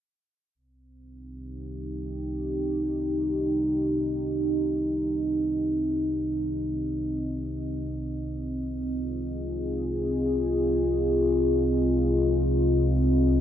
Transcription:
0.55 synth drone C2 C3, analog synth pad C4
0.94 analog synth pad D#4 G4
3.63 analog synth pad D#5
8.48 analog synth pad F4
8.59 analog synth pad G#4

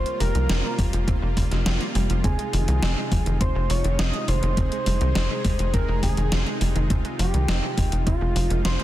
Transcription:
Already playing: supersaw synth C3 G3 A#3 F4, analog synth lead C5, fm electric piano C6
0.06 synth arpeggio sound A#3, closed hi-hat
0.20 analog synth bass F1, synth arpeggio sound G3, analog synth lead A#4, fm electric piano A#5, open hi-hat
0.35 analog synth bass C2, synth arpeggio sound F3, closed hi-hat
0.49 analog synth bass F1, synth arpeggio sound C4, snare, closed hi-hat
0.64 synth arpeggio sound A#3
0.79 analog synth bass F1, synth arpeggio sound F3, kick, open hi-hat
0.93 analog synth bass F1, synth arpeggio sound F3, closed hi-hat
1.08 analog synth bass F1, synth arpeggio sound C4, kick, closed hi-hat
1.22 analog synth bass F1, synth arpeggio sound A#3
1.37 analog synth bass F1, synth arpeggio sound G3, kick, open hi-hat
1.51 analog synth bass F1, synth arpeggio sound F3, snare, closed hi-hat
1.66 analog synth bass F1, synth arpeggio sound C4, snare, closed hi-hat
1.81 synth arpeggio sound A#3, closed hi-hat
1.95 analog synth bass F1, synth arpeggio sound G3, open hi-hat
2.10 analog synth bass F1, synth arpeggio sound F3, closed hi-hat
2.24 analog synth bass F1, supersaw synth G#3 D#4, synth arpeggio sound C4, analog synth lead G#4, fm electric piano G#5, kick, closed hi-hat
2.39 synth arpeggio sound G#3, closed hi-hat
2.53 analog synth bass F1, synth arpeggio sound D#3, open hi-hat
2.68 analog synth bass C2, synth arpeggio sound D#3, closed hi-hat
2.82 analog synth bass F1, synth arpeggio sound C4, snare, closed hi-hat
2.97 synth arpeggio sound G#3
3.12 analog synth bass F1, synth arpeggio sound F3, kick, open hi-hat
3.26 analog synth bass F1, synth arpeggio sound D#3, closed hi-hat
3.41 analog synth bass F1, synth arpeggio sound C4, analog synth lead C5, fm electric piano C6, kick, closed hi-hat
3.55 analog synth bass F1, synth arpeggio sound G#3
3.70 analog synth bass F1, synth arpeggio sound F3, analog synth lead C#5, fm electric piano C#6, open hi-hat
3.84 analog synth bass F1, synth arpeggio sound D#3, closed hi-hat
3.99 analog synth bass F1, synth arpeggio sound C4, analog synth lead D#5, fm electric piano D#6, snare, closed hi-hat
4.14 synth arpeggio sound G#3, closed hi-hat
4.28 analog synth bass F1, synth arpeggio sound D#3, analog synth lead C5, fm electric piano C6, open hi-hat
4.43 analog synth bass F1, synth arpeggio sound D#3, closed hi-hat
4.57 analog synth bass F1, synth arpeggio sound C4, supersaw synth G#4, kick, closed hi-hat
4.72 synth arpeggio sound G#3, closed hi-hat
4.86 analog synth bass F1, synth arpeggio sound G3, open hi-hat
5.01 analog synth bass C2, synth arpeggio sound D#3, closed hi-hat
5.15 analog synth bass F1, synth arpeggio sound C4, snare, closed hi-hat
5.30 synth arpeggio sound G#3
5.45 analog synth bass F1, synth arpeggio sound G3, kick, open hi-hat
5.59 analog synth bass F1, synth arpeggio sound D#3, closed hi-hat
5.74 analog synth bass F1, synth arpeggio sound C4, analog synth lead A#4, fm electric piano A#5, kick, closed hi-hat
5.88 analog synth bass F1, synth arpeggio sound G#3
6.03 analog synth bass F1, synth arpeggio sound D#3, analog synth lead G#4, fm electric piano G#5, kick, open hi-hat
6.17 analog synth bass F1, synth arpeggio sound D#3, closed hi-hat
6.32 analog synth bass F1, synth arpeggio sound C4, snare, closed hi-hat
6.46 synth arpeggio sound G#3, closed hi-hat
6.61 analog synth bass F1, synth arpeggio sound G3, open hi-hat
6.76 analog synth bass F1, synth arpeggio sound D#3, closed hi-hat
6.90 analog synth bass F1, synth arpeggio sound C4, supersaw synth F4, kick, closed hi-hat
7.05 synth arpeggio sound G#3, closed hi-hat
7.19 analog synth bass F1, synth arpeggio sound F3, analog synth lead G4, fm electric piano G5, open hi-hat
7.34 analog synth bass C2, synth arpeggio sound D#3, closed hi-hat
7.48 analog synth bass F1, synth arpeggio sound C4, snare, closed hi-hat
7.63 synth arpeggio sound G#3
7.77 analog synth bass F1, synth arpeggio sound D#3, kick, open hi-hat
7.92 analog synth bass F1, synth arpeggio sound D#3, closed hi-hat
8.07 analog synth bass F1, synth arpeggio sound C4, analog synth lead F4, fm electric piano F5, kick, closed hi-hat
8.21 analog synth bass F1, synth arpeggio sound G#3
8.36 analog synth bass F1, synth arpeggio sound F3, open hi-hat
8.50 analog synth bass F1, synth arpeggio sound D#3, closed hi-hat
8.65 analog synth bass F1, synth arpeggio sound C4, analog synth lead C5, fm electric piano C6, snare, closed hi-hat
8.79 synth arpeggio sound G#3, closed hi-hat

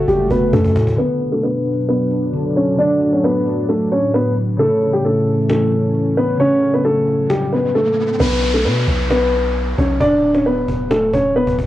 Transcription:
Already playing: analog synth pad C#3 A3 F#4
0.08 808-style bass F#1, grand piano G3 G4, cajon bass, cajon slap
0.31 808-style bass F#1, grand piano B3 B4, cajon bass
0.53 808-style bass F#2, grand piano A3 A4, cajon bass
0.64 cajon bass
0.76 808-style bass A2, cajon bass
0.83 cajon bass, cajon slap
0.91 cajon slap
0.95 analog synth pad B2 F#3 D4, harp D3 B3, grand piano B3 B4, cajon slap
1.02 harp F#4
1.21 cajon slap
1.32 grand piano A3 A4
1.43 grand piano B3 B4, cajon slap
1.66 cajon slap
1.73 cajon slap
1.81 cajon slap
1.89 grand piano B3 B4, cajon slap
2.11 cajon slap
2.32 harp D3 B3 A4, cajon slap
2.56 grand piano C#4 C#5, cajon slap
2.76 analog synth pad A2, harp D3 A3, grand piano D4 D5, cajon slap
2.82 harp F#4
3.01 cajon slap
3.13 grand piano C#4 C#5
3.24 grand piano B3 B4, cajon slap
3.46 cajon slap
3.69 grand piano A3 A4, cajon slap
3.92 grand piano C#4 C#5, cajon slap
4.14 grand piano B3 B4, cajon slap
4.37 cajon slap
4.57 harp C#3 A3, analog synth pad E3 C#4, grand piano A3 A4, cajon slap
4.63 harp E4
4.82 cajon slap
4.93 grand piano G3 G4
5.04 grand piano A3 A4, cajon slap
5.27 cajon slap
5.34 cajon slap
5.42 cajon slap
5.49 grand piano A3 A4, cajon slap
5.72 cajon slap
5.95 cajon slap
6.17 grand piano B3 B4, cajon slap
6.37 harp C#3 A3, analog synth pad F#3, grand piano C#4 C#5, cajon slap, riser
6.43 harp F#4
6.62 cajon slap
6.74 grand piano B3 B4
6.85 grand piano A3 A4, cajon slap
7.07 cajon slap
7.30 grand piano G3 G4, cajon slap
7.36 cajon slap
7.41 cajon slap
7.47 cajon slap
7.53 grand piano B3 B4, cajon slap
7.75 grand piano A3 A4, cajon slap
7.98 cajon slap
8.20 808-style bass B1, grand piano B3 B4, cajon bass, downlifter
8.43 cajon slap
8.54 grand piano A3 A4
8.65 808-style bass B2, grand piano B3 B4
8.88 808-style bass B1, cajon bass
8.95 cajon slap
9.03 cajon slap
9.10 grand piano B3 B4, cajon slap
9.33 cajon slap
9.56 cajon slap
9.78 808-style bass B1, grand piano C#4 C#5, cajon bass
10.00 808-style bass D1, grand piano D4 D5, cajon bass
10.23 cajon slap
10.34 grand piano C#4 C#5, cajon slap
10.45 grand piano B3 B4, cajon slap
10.68 808-style bass D1, cajon bass
10.91 grand piano A3 A4, cajon slap
11.13 808-style bass D1, grand piano C#4 C#5, cajon bass
11.36 grand piano B3 B4, cajon slap
11.47 808-style bass D1, cajon bass
11.59 808-style bass D1, cajon bass

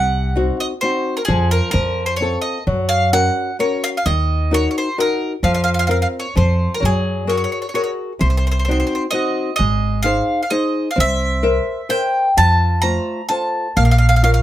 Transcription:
Already playing: upright bass C2, nylon-string guitar C3, mandolin F#5
0.36 nylon-string guitar C4 D#4 F#4
0.60 mandolin D#5
0.81 nylon-string guitar C4 D#4 F#4, mandolin C5
1.17 mandolin A#4
1.25 upright bass F2, nylon-string guitar F3, mandolin G#4
1.51 mandolin A#4
1.71 upright bass F2, nylon-string guitar F3, mandolin A#4
2.06 mandolin C5
2.16 mandolin C#5
2.21 nylon-string guitar C4 F4 A4
2.42 mandolin D#5
2.67 upright bass F#2, nylon-string guitar F#3
2.89 mandolin F5
3.13 nylon-string guitar C#4 F#4 A#4, mandolin F#5
3.59 nylon-string guitar C#4 F#4 A#4, mandolin C#5
3.84 mandolin F5
3.97 mandolin F5
4.06 upright bass D#2, nylon-string guitar D#3, mandolin D#5
4.51 nylon-string guitar D#4 F#4 A#4, mandolin C#5
4.71 mandolin C#5
4.78 mandolin C5
4.98 nylon-string guitar D#4 F#4 A#4, mandolin A#4
5.43 upright bass F2, nylon-string guitar F3, mandolin F5
5.54 mandolin F5
5.64 mandolin F5
5.74 mandolin F5
5.79 mandolin F5
5.87 nylon-string guitar C4 F4 A#4, mandolin F5
6.02 mandolin F5
6.20 mandolin C#5
6.36 upright bass F2, nylon-string guitar F3, mandolin C5
6.74 mandolin A#4
6.80 upright bass F#2, nylon-string guitar F#3
6.85 mandolin G#4
7.27 nylon-string guitar F#4 G#4 A#4, mandolin C#5
7.37 mandolin C#5
7.44 mandolin C#5
7.52 mandolin C#5
7.62 mandolin C#5
7.69 mandolin C#5
7.74 nylon-string guitar F#4 G#4 A#4, mandolin C#5
7.84 mandolin C#5
8.19 upright bass C2, nylon-string guitar C3, mandolin C5
8.30 mandolin C5
8.37 mandolin C5
8.47 mandolin C5
8.52 mandolin C5
8.59 mandolin C5
8.65 nylon-string guitar C4, mandolin C5
8.69 nylon-string guitar D#4 F#4, mandolin C5
8.80 mandolin C5
8.87 mandolin C5
8.95 mandolin C5
9.11 nylon-string guitar C4 D#4 F#4, mandolin D#5
9.56 upright bass G#1, nylon-string guitar G#3, mandolin D#5
10.03 nylon-string guitar D#4 G#4 C5, mandolin F5
10.43 mandolin F5
10.50 nylon-string guitar D#4 G#4 C5, mandolin D#5
10.91 mandolin F5
10.96 upright bass C2, nylon-string guitar C4
11.00 mandolin E5
11.43 nylon-string guitar A#4 C5 E5
11.89 nylon-string guitar A#4 C5 E5, mandolin G5
12.37 upright bass F2, nylon-string guitar F3, mandolin A5
12.82 nylon-string guitar A3 F4 C5, mandolin A#5
13.29 nylon-string guitar F4 A4 C5, mandolin A5
13.76 upright bass A#1, nylon-string guitar A#3, mandolin F5
13.85 mandolin F5
13.91 mandolin F5
13.98 mandolin F5
14.09 mandolin F5
14.16 mandolin F5
14.23 nylon-string guitar F4 A#4 C#5, mandolin F5
14.34 mandolin F5

